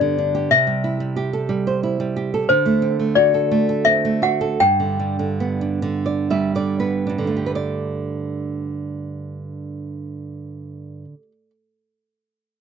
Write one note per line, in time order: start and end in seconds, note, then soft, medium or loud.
0.00 0.46 G2 medium
0.00 0.49 D3 soft
0.00 0.48 B3 soft
0.00 0.17 D4 soft
0.00 0.33 G4 soft
0.00 0.46 D5 medium
0.19 0.50 D4 soft
0.35 0.50 G4 soft
0.51 2.44 C3 medium
0.51 2.11 E5 medium
0.67 0.99 G3 soft
0.84 1.33 E4 soft
1.00 1.48 G3 soft
1.16 2.15 G4 soft
1.33 1.67 A4 soft
1.49 1.99 G3 medium
1.67 1.83 C5 soft
1.83 2.33 E4 soft
2.00 2.47 G3 soft
2.16 2.47 G4 soft
2.34 2.48 A4 soft
2.49 4.56 D3 medium
2.49 3.18 C5 medium
2.66 2.98 A3 soft
2.82 3.85 C4 soft
2.99 3.50 A3 soft
3.15 4.21 F#4 soft
3.15 3.81 D5 medium
3.34 3.68 A4 soft
3.51 4.04 A3 medium
3.69 4.40 A4 soft
3.85 4.57 C4 medium
3.85 4.19 E5 medium
4.05 4.58 A3 soft
4.22 4.58 F#4 soft
4.22 4.61 F#5 medium
4.41 4.59 A4 soft
4.60 7.08 G2 medium
4.60 6.27 G5 medium
4.80 5.18 D3 soft
4.99 5.61 G3 soft
5.19 5.81 D3 soft
5.40 6.78 B3 soft
5.61 7.05 D4 soft
5.82 6.54 D3 medium
6.06 6.30 D5 soft
6.30 7.29 G3 soft
6.30 6.53 E5 medium
6.55 7.17 D3 soft
6.55 6.78 D5 medium
6.80 7.30 B3 soft
6.80 7.28 B4 soft
7.07 11.04 G2 soft
7.07 7.27 D4 soft
7.18 11.13 D3 soft
7.27 11.22 A3 soft
7.37 11.31 G4 soft
7.46 7.55 B4 soft
7.55 11.50 D5 soft